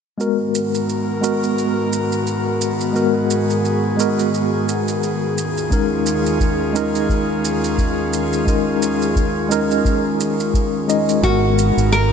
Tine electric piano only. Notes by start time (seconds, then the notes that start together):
0.18 G#3 B3 F#4 A#4
1.21 G#3 B3 F#4 A#4
2.93 G#3 B3 F#4 A#4
3.97 G#3 B3 F#4 A#4
5.70 G#3 C#4 D#4 A#4
6.73 G#3 C#4 D#4 A#4
8.45 G#3 C#4 D#4 A#4
9.49 G#3 C#4 D#4 A#4
10.88 G#3 C#4 D#4 D#5
11.21 G#3 B3 F#4 A#4